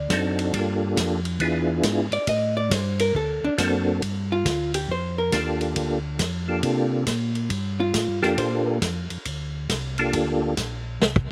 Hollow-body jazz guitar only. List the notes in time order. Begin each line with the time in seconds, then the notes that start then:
Already playing: D5
2.13 D5
2.29 D#5
2.57 D5
2.74 C5
3.00 A#4
3.16 A4
3.44 D4
4.32 F4
4.75 G4
4.91 C5
5.18 A#4
7.80 F4
8.23 G4
8.38 C5
8.67 A#4